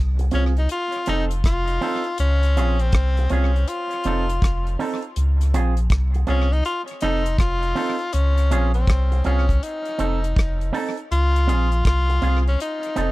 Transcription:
Already playing: sub bass C2
0.19 muted clean electric guitar stroke, closed hi-hat
0.31 sub bass C2, clean electric guitar C4 F4 G#4, tenor saxophone C#4, closed hi-hat
0.57 tenor saxophone D#4, closed hi-hat
0.69 tenor saxophone F4, closed hi-hat
0.92 closed hi-hat
1.06 sub bass F1, clean electric guitar C4 D#4 A4, tenor saxophone D#4, closed hi-hat
1.31 closed hi-hat
1.44 sub bass F1, tenor saxophone F4, kick, cross-stick, closed hi-hat
1.68 closed hi-hat
1.81 clean electric guitar C4 D#4 A4, open hi-hat
2.04 closed hi-hat
2.18 sub bass C#2, tenor saxophone C#4, closed hi-hat
2.43 closed hi-hat
2.57 sub bass A#1, clean electric guitar C4 F4 G#4, closed hi-hat
2.79 tenor saxophone C4, closed hi-hat
2.92 sub bass C2, kick, cross-stick, closed hi-hat
3.17 muted clean electric guitar stroke, closed hi-hat
3.30 sub bass C2, clean electric guitar C4 F4 G#4, tenor saxophone C#4, closed hi-hat
3.56 closed hi-hat
3.68 tenor saxophone F4, closed hi-hat
3.91 closed hi-hat
4.04 sub bass F1, clean electric guitar C4 D#4 A4, closed hi-hat
4.29 closed hi-hat
4.42 sub bass F1, kick, cross-stick, closed hi-hat
4.67 closed hi-hat
4.79 clean electric guitar C4 D#4 A4, open hi-hat
5.02 closed hi-hat
5.16 sub bass C#2, closed hi-hat
5.41 closed hi-hat
5.54 sub bass A#1, clean electric guitar C4 F4 G#4, closed hi-hat
5.77 closed hi-hat
5.90 sub bass C2, kick, cross-stick, closed hi-hat
6.14 muted clean electric guitar stroke, closed hi-hat
6.27 sub bass C2, clean electric guitar C4 F4 G#4, tenor saxophone C#4, closed hi-hat
6.53 tenor saxophone D#4, closed hi-hat
6.65 tenor saxophone F4, closed hi-hat
6.88 closed hi-hat
7.01 sub bass F1, clean electric guitar C4 D#4 A4, tenor saxophone D#4, closed hi-hat
7.26 closed hi-hat
7.38 sub bass F1, tenor saxophone F4, kick, cross-stick, closed hi-hat
7.63 closed hi-hat
7.75 clean electric guitar C4 D#4 A4, open hi-hat
7.99 closed hi-hat
8.13 sub bass C#2, tenor saxophone C#4, closed hi-hat
8.38 closed hi-hat
8.51 sub bass A#1, clean electric guitar C4 F4 G#4, closed hi-hat
8.74 tenor saxophone C4, closed hi-hat
8.87 sub bass C2, kick, cross-stick, closed hi-hat
9.12 muted clean electric guitar stroke, closed hi-hat
9.24 sub bass C2, clean electric guitar C4 F4 G#4, tenor saxophone C#4, closed hi-hat
9.49 kick, closed hi-hat
9.63 tenor saxophone D#4, closed hi-hat
9.85 closed hi-hat
9.98 sub bass F1, clean electric guitar C4 D#4 A4, closed hi-hat
10.24 closed hi-hat
10.36 sub bass F1, kick, cross-stick, closed hi-hat
10.61 closed hi-hat
10.73 clean electric guitar C4 D#4 A4, open hi-hat
10.97 closed hi-hat
11.11 sub bass C#2, tenor saxophone F4, closed hi-hat
11.36 closed hi-hat
11.47 sub bass A#1, clean electric guitar C4 F4 G#4, closed hi-hat
11.72 closed hi-hat
11.85 sub bass C2, tenor saxophone F4, kick, cross-stick, closed hi-hat
12.09 muted clean electric guitar stroke, closed hi-hat
12.22 sub bass C2, clean electric guitar C4 F4 G#4, closed hi-hat
12.48 tenor saxophone C#4, closed hi-hat
12.60 tenor saxophone D#4, closed hi-hat
12.83 closed hi-hat
12.96 sub bass F1, clean electric guitar C4 D#4 A4, closed hi-hat

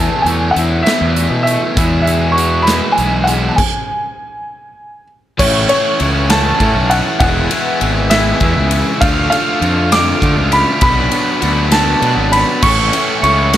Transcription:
Already playing: distorted electric guitar E2 B2 E3 A3 B3 E4, overdriven electric guitar B3 E4, upright piano A5
0.22 fingered electric bass E2, overdriven electric guitar A3, upright piano G#5
0.26 closed hi-hat
0.51 upright piano F#5
0.56 fingered electric bass E2, overdriven electric guitar E4, closed hi-hat
0.83 distorted electric guitar E3 A3 B3 E4, upright piano E5, closed hi-hat
0.87 distorted electric guitar E2 B2, snare
1.01 fingered electric bass E2
1.16 overdriven electric guitar E3, closed hi-hat
1.31 fingered electric bass B2
1.43 overdriven electric guitar A3, upright piano E5
1.47 closed hi-hat
1.75 distorted electric guitar E2 B2 E3 G#3 B3 E4, fingered electric bass E2, transistor combo organ G#3 F#4 E5, kick, closed hi-hat
2.02 upright piano E5
2.07 overdriven electric guitar G#3, closed hi-hat
2.32 upright piano C#6
2.37 overdriven electric guitar F#4, closed hi-hat
2.62 distorted electric guitar E4, upright piano B5
2.67 distorted electric guitar E2 B2 E3 G#3 B3, snare, closed hi-hat
2.92 upright piano G#5
2.98 fingered electric bass B1, overdriven electric guitar E3, closed hi-hat
3.24 upright piano F#5, closed hi-hat
3.29 overdriven electric guitar G#3
3.49 upright piano A5
3.56 upright piano G#5, kick, crash
5.37 fingered electric bass A1, distorted electric guitar A2 E3 A3 C#4 E4, transistor combo organ C#4 A4 F#5, upright piano C#5, glockenspiel C#6, kick, crash
5.69 distorted electric guitar A2 E3 A3 C#4 E4, upright piano C#5, glockenspiel C#6, ride
6.00 fingered electric bass C#2, distorted electric guitar A2 E3 A3 C#4 E4, ride
6.28 distorted electric guitar A2 E3 A3 C#4 E4, upright piano A5, glockenspiel A6, snare, ride
6.60 distorted electric guitar A2 E3 A3 C#4 E4, fingered electric bass A2, kick, ride
6.75 fingered electric bass B1
6.90 upright piano F#5, glockenspiel F#6, ride
7.19 fingered electric bass E1, distorted electric guitar E2 B2 E3 G#3 B3 E4, transistor combo organ E4 B4 G#5, upright piano F#5, glockenspiel F#6, kick, ride
7.49 distorted electric guitar E2 B2 E3 G#3 B3 E4, ride
7.79 fingered electric bass G#1, distorted electric guitar E2 B2 E3 G#3 B3 E4, ride
8.09 distorted electric guitar E2 B2 E3 G#3 B3 E4, upright piano E5, glockenspiel E6, snare, ride
8.38 distorted electric guitar E2 B2 E3 G#3 B3 E4, fingered electric bass E2, kick, ride
8.56 fingered electric bass C#2
8.71 ride
9.01 fingered electric bass D2, distorted electric guitar D3 A3 D4 F4, overdriven electric guitar F3, transistor combo organ D4 A4 F5, upright piano F5, glockenspiel F6, kick, ride
9.29 distorted electric guitar D3 A3 D4 F4, overdriven electric guitar F3, upright piano F5, ride
9.34 glockenspiel F6
9.61 fingered electric bass F2, distorted electric guitar D3 A3 D4 F4, overdriven electric guitar F3, ride
9.90 distorted electric guitar D3 A3 D4 F4, overdriven electric guitar F3, upright piano D6, snare, ride
9.94 glockenspiel D7
10.19 distorted electric guitar D3 A3 D4 F4, fingered electric bass D3, overdriven electric guitar F3, kick, ride
10.37 fingered electric bass C#2
10.52 upright piano B5, glockenspiel B6, ride
10.81 fingered electric bass B1, distorted electric guitar B2 F#3 B3 D4 F#4, transistor combo organ B4 F#5, upright piano B5, glockenspiel B6, kick, ride
11.12 distorted electric guitar B2 F#3 B3 D4 F#4, ride
11.41 fingered electric bass D2, distorted electric guitar B2 F#3 B3 D4 F#4, ride
11.71 distorted electric guitar B2 F#3 B3 D4 F#4, upright piano A5, glockenspiel A6, snare, ride
12.00 distorted electric guitar B2 F#3 B3 D4 F#4, fingered electric bass B2, ride
12.17 fingered electric bass G#1
12.32 upright piano B5, glockenspiel B6, ride
12.61 fingered electric bass A1, distorted electric guitar A2 E3 A3 C#4 E4, transistor combo organ C#4 A4, upright piano C#6, glockenspiel C#7, kick, crash
12.91 distorted electric guitar A2 E3 A3 C#4 E4, ride
13.21 fingered electric bass C#2, distorted electric guitar A2 E3 A3 C#4 E4, upright piano C#6, glockenspiel C#7, ride
13.52 distorted electric guitar A2 E3 A3 C#4 E4, snare, ride

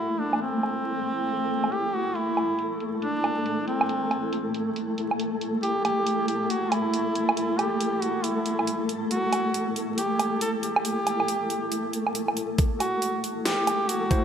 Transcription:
Already playing: ambient pad A3 E4, synth texture A3 A4, duduk E4
0.20 duduk D4, closed hi-hat
0.33 low woodblock
0.42 duduk C4, closed hi-hat
0.63 closed hi-hat, low woodblock
0.85 closed hi-hat
1.07 closed hi-hat
1.29 closed hi-hat
1.50 closed hi-hat
1.64 low woodblock
1.72 duduk G4, closed hi-hat
1.94 duduk F#4, closed hi-hat
2.15 duduk E4, closed hi-hat
2.37 closed hi-hat, low woodblock
2.59 closed hi-hat
2.80 closed hi-hat
3.02 duduk D4, closed hi-hat
3.24 closed hi-hat, low woodblock
3.46 closed hi-hat
3.68 duduk C4, closed hi-hat
3.81 low woodblock
3.89 closed hi-hat
4.11 closed hi-hat, low woodblock
4.33 closed hi-hat
4.54 closed hi-hat
4.76 closed hi-hat
4.98 closed hi-hat
5.11 low woodblock
5.20 closed hi-hat
5.41 closed hi-hat
5.63 duduk G4, closed hi-hat
5.85 duduk G4, closed hi-hat, low woodblock
6.07 closed hi-hat
6.28 duduk G4, closed hi-hat
6.50 duduk F#4, closed hi-hat
6.71 duduk E4, closed hi-hat, low woodblock
6.94 closed hi-hat
7.15 closed hi-hat
7.29 low woodblock
7.37 duduk E4, closed hi-hat
7.58 duduk G4, closed hi-hat, low woodblock
7.81 closed hi-hat
8.02 duduk F#4, closed hi-hat
8.24 duduk E4, closed hi-hat
8.46 closed hi-hat
8.59 low woodblock
8.67 closed hi-hat
8.89 closed hi-hat
9.11 duduk F#4, closed hi-hat
9.33 closed hi-hat, low woodblock
9.54 closed hi-hat
9.76 closed hi-hat
9.98 duduk G4, closed hi-hat
10.19 closed hi-hat, low woodblock
10.41 duduk A4, closed hi-hat
10.63 duduk G4, closed hi-hat
10.76 low woodblock
10.85 closed hi-hat
11.07 closed hi-hat, low woodblock
11.20 low woodblock
11.28 closed hi-hat
11.50 closed hi-hat
11.72 closed hi-hat
11.93 closed hi-hat
12.07 low woodblock
12.15 closed hi-hat
12.28 low woodblock
12.37 closed hi-hat
12.58 ambient pad A3 E4, synth texture A3 A4, kick, closed hi-hat
12.80 duduk F#4, closed hi-hat, low woodblock
13.02 closed hi-hat
13.24 closed hi-hat
13.46 duduk G4, snare, closed hi-hat
13.67 closed hi-hat, low woodblock
13.89 duduk F#4, closed hi-hat
14.11 tine electric piano A3 E4 C5, kick, closed hi-hat

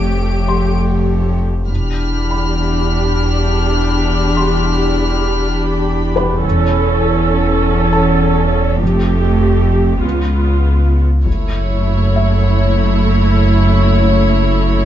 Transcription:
Already playing: sub bass F1, cello section F2, viola section A3 G4, violin section C#5 D7
0.48 felt piano C6
1.69 double bass section E1, sub bass E1, cello section E2, viola section D4 G4, violin section B5 F6
2.31 felt piano B5
4.37 felt piano C6
6.16 felt piano B4 B5
6.44 sub bass E1, double bass section E1, cello section E2, viola section C#4 A4
7.93 felt piano A5
8.80 sub bass F1, double bass section F1, cello section F2, viola section A3 G4
10.02 cello section C#2, double bass section C#2, sub bass C#2, viola section B3 F4
11.25 double bass section F#1, sub bass F#1, cello section F#2, viola section A3 E4, violin section C#5, taiko
12.16 felt piano E5

